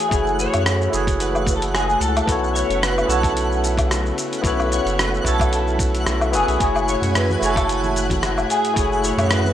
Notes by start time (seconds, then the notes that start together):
Already playing: E3 A3 E4 F#4 G#4 C#5 F#5 G#5 F#6
0.00 closed hi-hat, shaker
0.08 F#1 A3 E4 F#4, kick, closed hi-hat, shaker
0.13 G#4 C#5
0.27 shaker
0.39 C#5, shaker
0.54 F#2, closed hi-hat, low woodblock, shaker
0.66 cross-stick, closed hi-hat, shaker
0.81 shaker
0.90 F#1 A3 E4 F#4, closed hi-hat, shaker
0.95 G#4 C#5
1.07 kick, closed hi-hat, shaker
1.20 B4, closed hi-hat, shaker
1.35 low woodblock, shaker
1.47 kick, closed hi-hat, shaker
1.56 A4
1.62 closed hi-hat, shaker
1.74 G#4, cross-stick, closed hi-hat, shaker
1.90 shaker
2.00 C#2 A4, closed hi-hat, shaker
2.17 closed hi-hat, low woodblock, shaker
2.26 B1 C#3 B3 E4 F#4, kick, closed hi-hat, shaker
2.30 A4 C#5
2.44 shaker
2.54 C#5, shaker
2.70 F#1, closed hi-hat, shaker
2.81 B4, cross-stick, closed hi-hat, shaker
2.98 low woodblock, shaker
3.06 B1 B3 E4 F#4 A4, closed hi-hat, shaker
3.11 A4 C#5
3.23 kick, closed hi-hat, shaker
3.37 closed hi-hat, shaker
3.52 shaker
3.64 closed hi-hat, shaker
3.77 kick, closed hi-hat, low woodblock, shaker
3.91 cross-stick, closed hi-hat, shaker
4.06 shaker
4.18 closed hi-hat, shaker
4.33 closed hi-hat, shaker
4.41 B1 B3 E4 F#4, kick, closed hi-hat, shaker
4.46 A4 B4 C#5
4.60 low woodblock, shaker
4.72 C#5, closed hi-hat, shaker
4.85 F#1, closed hi-hat, shaker
4.99 B4, cross-stick, closed hi-hat, shaker
5.14 shaker
5.22 B1 B3 E4 F#4, kick, closed hi-hat
5.26 A4 C#5, shaker
5.40 kick, closed hi-hat, low woodblock, shaker
5.53 closed hi-hat, shaker
5.68 shaker
5.79 kick, closed hi-hat, shaker
5.95 closed hi-hat, shaker
6.06 B1, cross-stick, closed hi-hat, shaker
6.21 low woodblock, shaker
6.32 F#1 B3 E4 F#4 G#4 A4 B4, closed hi-hat, shaker
6.48 B1, closed hi-hat, shaker
6.58 F#1 A2 A3 E4 F#4 G#5, kick, closed hi-hat, shaker
6.62 G#4 C#5
6.76 low woodblock, shaker
6.88 C#5, shaker
7.02 F#2, closed hi-hat, low conga, shaker
7.15 B4, cross-stick, closed hi-hat, shaker
7.30 high conga, shaker
7.39 F#1 A3 E4 F#4, closed hi-hat, shaker
7.44 A4 C#5 G#5
7.56 kick, closed hi-hat, low woodblock, shaker
7.69 closed hi-hat, shaker
7.84 high conga, shaker
7.96 closed hi-hat, shaker
8.10 kick, closed hi-hat, high bongo, high conga, shaker
8.23 cross-stick, closed hi-hat, shaker
8.38 low woodblock, shaker
8.50 G#4, closed hi-hat, shaker
8.65 closed hi-hat, shaker
8.74 F#1 F#3 A3 E4 F#4, kick, closed hi-hat, shaker
8.78 G#4 C#5
8.92 shaker
9.04 C#5, shaker
9.18 F#2, closed hi-hat, low conga, low woodblock, shaker
9.31 B4, cross-stick, closed hi-hat, shaker
9.45 high conga, shaker